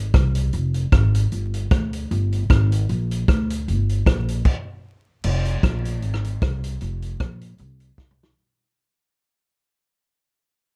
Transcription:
0.14 C2, kick, cross-stick, closed hi-hat
0.35 closed hi-hat
0.53 F1, closed hi-hat
0.74 closed hi-hat
0.92 G#1, kick, cross-stick, closed hi-hat
1.15 closed hi-hat
1.32 G1, closed hi-hat
1.54 closed hi-hat
1.71 D2, kick, cross-stick, closed hi-hat
1.93 closed hi-hat
2.11 G1, closed hi-hat
2.32 closed hi-hat
2.50 G#1, kick, cross-stick, closed hi-hat
2.72 closed hi-hat
2.89 A#1, closed hi-hat
3.11 closed hi-hat
3.28 D2, kick, cross-stick, closed hi-hat
3.50 closed hi-hat
3.68 G1, closed hi-hat
3.89 closed hi-hat
4.06 A#1, kick, cross-stick, closed hi-hat
4.28 closed hi-hat
4.45 kick, crash
5.24 F1, crash
5.45 closed hi-hat
5.63 A#1, kick, cross-stick, closed hi-hat
5.85 closed hi-hat
6.02 G#1, closed hi-hat
6.14 cross-stick
6.25 closed hi-hat
6.42 C2, kick, cross-stick, closed hi-hat
6.64 closed hi-hat
6.81 F1, closed hi-hat
7.02 closed hi-hat
7.20 A#1, kick, cross-stick, closed hi-hat
7.41 closed hi-hat
7.58 C2, closed hi-hat
7.80 closed hi-hat
7.98 C2, kick, snare
8.11 mid tom
8.23 snare

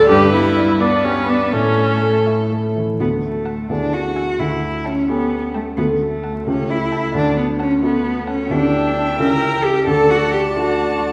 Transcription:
Already playing: D2 A3 F#4 D5
0.09 G2 G3 G4 B4
0.33 B3 E4
0.57 D5
0.80 B3 D4 B4
1.04 C#4 G4
1.29 B3 D4
1.52 A2 A3 C#4 A4
1.78 A3
2.02 A4
2.27 E4
2.51 A3
2.76 E3
3.00 D2 A3 B3 F#4 A4
3.24 A3
3.45 F#5 A5
3.69 D2 B3 D4 E4 G#4
3.93 F#4
4.16 E5 G#5
4.39 D2 E4
4.85 C#4 G5 A5
5.09 B3 C#4 G4 A4
5.54 A3 G5 A5
5.77 D2 A3 B3 F#4 A4
6.00 A3
6.23 F#5 A5
6.47 C#2 A3 C#4 G4 A4
6.70 E4
6.92 G5 A5
7.14 D2 D4
7.37 B3
7.60 C#4 F#5 A5
7.82 A3 B3 F#4 A4
8.27 C#4 F#5 A5
8.50 D2 B3 D4 E4 G4 E5 G5
9.19 C#2 C#4 E4 G4 A#4
9.63 G4
9.86 D2 A4 D5 A5
10.10 F#4
10.32 G4
10.55 A3 D4 F#4

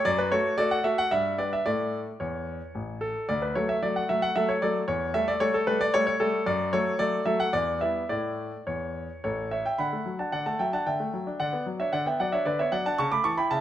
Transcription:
0.05 F#2 D5
0.18 B4
0.32 A3 F#4 A4 C#5
0.58 A3 F#4 A4 D5
0.71 F#5
0.84 A3 F#4 A4 E5
0.98 F#5
1.11 G2 E5
1.38 G3 D4 B4 D5
1.53 E5
1.66 A2 A3 A4 D5
2.20 E2 C#5
2.75 A1
3.01 A4
3.29 D2 D5
3.42 B4
3.55 F#3 A3 A4 C#5
3.69 E5
3.83 F#3 A3 A4 D5
3.96 F#5
4.09 F#3 A3 A4 E5
4.22 F#5
4.36 F#3 A3 A4 E5
4.49 C#5
4.62 F#3 A3 A4 D5
4.88 E2 C#5
5.14 G3 A3 A4 E5
5.28 D5
5.40 G3 A3 A4 C#5
5.54 A4
5.67 G3 A3 A4 B4
5.81 D5
5.94 G3 A3 A4 C#5
6.07 C#5
6.20 G3 A3 A4
6.46 F#2 D5
6.73 F#3 A3 A4 C#5
6.99 F#3 A3 A4 D5
7.26 F#3 A3 A4 E5
7.40 F#5
7.53 E2 D5
7.81 G3 B3 E4 E5
8.09 A2 A3 E4 D5
8.67 E2 C#5
9.24 A1 A4 C#5
9.51 C#5 E5
9.66 E5 G5
9.79 D3 F#5 B5
9.93 A3
10.06 F#3
10.19 D4 F#5 A5
10.32 D3 D5 F#5
10.46 A3 F#5 A5
10.59 F#3 E5 G5
10.73 D4 F#5 A5
10.86 D3 E5 G5
11.00 A3
11.14 F#3
11.27 D4
11.40 D3 D5 F#5
11.53 B3
11.66 F#3
11.80 D4 C#5 E5
11.93 D3 D5 F#5
12.06 B3 E5 G5
12.20 F#3 D5 F#5
12.32 D4 C#5 E5
12.45 D3 B4 D5
12.59 B3 C#5 E5
12.72 F#3 D5 F#5
12.86 D4 F#5 A5
12.98 C#3 A5 C#6
13.12 A3 B5 D6
13.24 E3 A5 C#6
13.37 E4 G5 B5
13.51 C#3 E5 A5

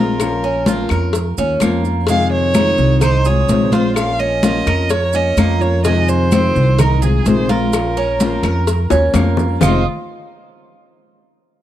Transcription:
Already playing: A#1 G#3 C4 F4 A#4
0.19 F3 A#3 C#4 F4, cowbell, high conga, claves, maracas
0.43 C#4, high conga
0.66 F3 A#3 C#4 F4, cowbell, high conga, maracas
0.89 F2 A#4, cowbell, high conga, claves, maracas
1.13 muted nylon-string guitar stroke, cowbell, high conga, maracas
1.38 D#2 A#3 C#4 F4, high conga, maracas
1.60 F2 F3 A#3 C#4 F4, cowbell, high conga, claves, maracas
1.84 A#3 C#4 F4, high conga, maracas
2.07 C3 D#3 G#3 C4 F5, cowbell, high conga, maracas
2.11 F4
2.32 C#5, high conga
2.54 C3 D#3 G#3 D#4 F4, cowbell, high conga, claves, maracas
2.78 C2, high conga, maracas
3.01 D#4 C5, muted nylon-string guitar stroke, cowbell, high conga, low conga, claves, maracas
3.25 G#3 C4 F4 G#4 C#5, high conga, maracas
3.49 A#1 C3 D#3 G#3 C4 F4, cowbell, high conga, maracas
3.72 G#3 C4 F4 C5, cowbell, high conga, maracas
3.96 F3 A#3 C#4 F4 F5, cowbell, high conga, claves, maracas
4.20 C#4 D#5, high conga
4.43 F3 A#3 C#4 F4, cowbell, high conga, maracas
4.67 F2 A#4, cowbell, high conga, claves, maracas
4.90 C#5, muted nylon-string guitar stroke, cowbell, high conga, maracas
5.13 A#3 C#4 F4 D#5, high conga, maracas
5.37 F2 F3 A#3 C#4 F4, cowbell, high conga, claves, maracas
5.61 A#3 C#4 F4 C#5, high conga, maracas
5.84 C3 D#3 G#3 C4 F4 D#5, cowbell, high conga, maracas
6.08 C5, high conga, maracas
6.31 C3 D#3 G#3 C4 F4, cowbell, high conga, claves, maracas
6.55 C2, high conga, maracas
6.78 D#4 A#4, muted nylon-string guitar stroke, cowbell, high conga, low conga, claves, maracas
7.02 G#3 C4 F4 G#4, high conga, low conga, maracas
7.26 A#1 C3 D#3 G#3 C4 F4 C5, cowbell, high conga, maracas
7.49 G#3 C4 F4 A#4, cowbell, high conga, maracas
7.73 F3 A#3 C#4 F4, cowbell, high conga, claves, maracas
7.97 C#4, high conga
8.20 F3 A#3 C#4 F4, cowbell, high conga, maracas
8.43 F2 A#4, cowbell, high conga, claves, maracas
8.67 muted nylon-string guitar stroke, cowbell, high conga, maracas
8.90 D#2 A#3 C#4 F4, high bongo, high conga, maracas
9.14 F2 F3 A#3 C#4 F4, cowbell, low bongo, high conga, claves, maracas
9.37 A#3 C#4 F4, low bongo, high conga, maracas
9.61 F1 F2 C3 D#3 G#3 C4 F4 C5 D#5, low bongo, low conga, claves, maracas

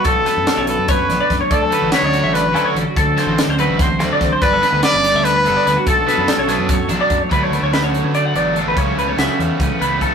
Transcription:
Already playing: D4 F#4
0.04 B1 B2 A4, kick, closed hi-hat
0.25 A3 B4, snare, closed hi-hat
0.37 F#2
0.47 D4 A4, snare, closed hi-hat
0.57 B1 C#5
0.67 F#3 A4 B4, closed hi-hat
0.78 F#2
0.88 A3 B4 C#5, kick, closed hi-hat
1.09 B1 D4, snare, closed hi-hat
1.21 D5
1.30 F#2 A3, kick, snare, closed hi-hat
1.41 C#5
1.49 D2 D3 A4 D5, kick, closed hi-hat
1.62 A4
1.71 D3 A3 C#4 D4 F#4 B4, closed hi-hat
1.82 A1
1.92 D4 B4 C#5, snare, closed hi-hat
2.02 D2 D5
2.12 D3 F#3 A3 D4 F#4, closed hi-hat
2.23 A1 E5
2.34 C#4 B4 D5, snare, closed hi-hat
2.45 B4
2.53 D2 D3 A3 D4 F#4 A4, closed hi-hat
2.65 C#5
2.75 A1 C#4 A4, closed hi-hat
2.87 F#4
2.96 D2 D3 A4, kick, closed hi-hat
3.17 D3 A3 C4 F#4 C5, snare, closed hi-hat
3.27 A1 C4
3.38 D4 A4, snare, closed hi-hat
3.48 D2 C5
3.59 D3 F#3 A3 C4 F#4 B4, closed hi-hat
3.68 A1
3.79 C4 C5, kick, snare, closed hi-hat
3.99 D2 D3 A3 C4 D4 F#4, snare, closed hi-hat
4.13 D5
4.21 A1 C4, kick, snare, closed hi-hat
4.32 C5
4.42 G1 G2 B4 D5, kick, closed hi-hat
4.53 A4
4.62 D3 G3 B3 D4 B4, snare, closed hi-hat
4.73 D2
4.83 D4 B4 D5, snare, closed hi-hat
4.94 G1 D5
5.04 D3 G3 B3 D4, snare, closed hi-hat
5.14 D2 E5
5.24 A3 B4 D5, closed hi-hat
5.36 B3 B4
5.44 G1 D3 G3 B3 D4 A4, closed hi-hat
5.57 D5
5.66 D2 B3 B4, snare, closed hi-hat
5.77 F#4 B4
5.86 B1 B2 A4, kick, closed hi-hat
6.06 B2 F#3 A3 B3 D4 B4, snare, closed hi-hat
6.18 F#2
6.28 D4 A4, snare, closed hi-hat
6.38 B1 C#5
6.47 B2 F#3 B3 D4 B4, snare, closed hi-hat
6.59 F#2
6.69 A3 C#5, kick, closed hi-hat
6.89 B1 B2 F#3 B3 D4, closed hi-hat
7.01 D5
7.10 F#2 A3, kick, closed hi-hat
7.21 C#5
7.30 D2 D3 F#3 A3 B3 D4 F#4 B4, kick, closed hi-hat
7.43 C#5
7.50 D2 A3 B3 D4 B4, closed hi-hat
7.55 F#3
7.62 D2 C#5
7.72 D3 F#3 A3 D4 F#4 B4, snare, closed hi-hat
7.84 C#5
7.94 F#3, closed hi-hat
8.03 D3 B4
8.14 D4 D5, closed hi-hat
8.25 F#5
8.34 A1 F#3 A3 B3 D4 D5, closed hi-hat
8.55 A2 D3 F#3 A3 D4 A4, closed hi-hat
8.66 A1 B4
8.76 C#2 C#3 G3 A3 E4 C#5, kick, closed hi-hat
8.97 C#2 G3 A3 E4 B4, closed hi-hat
9.08 B3 C#5
9.18 C#2 C#3 G3 A3 E4 F#4 E5, snare, closed hi-hat
9.39 E2 E3 C#5, closed hi-hat
9.59 C#2 C#4 B4, kick, closed hi-hat
9.79 C#2 G3 A3 B3 E4 B4, closed hi-hat
9.99 C#3 G3 C#4 A4, kick, closed hi-hat
10.03 A3 E4

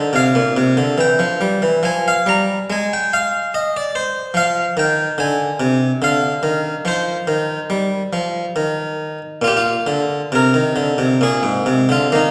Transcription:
Already playing: D3 C5
0.13 C3 F5
0.35 A#2
0.57 C3
0.77 D3
0.98 E3 G5
1.19 F3
1.41 G3
1.62 E3
1.83 F3 G#5
2.08 F5
2.26 G3 A#5
2.70 G#3 G#5
2.93 G5
3.13 F5
3.54 D#5
3.77 D5
3.95 C5
4.34 F3 F5
4.77 D#3 G5
5.18 D3 G#5
5.60 C3
6.02 D3 F5
6.43 D#3
6.85 F3 C5
7.27 D#3
7.70 G3
8.13 F3
8.56 D#3
9.42 A#2 F4
9.48 G4
9.57 F4
9.87 D3
10.32 C3 A#4
10.54 D#3
10.76 D3
10.98 C3
11.21 A#2 G#4
11.43 G#2
11.66 C3
11.89 D3 F4
12.12 D#3 A#3 D#4

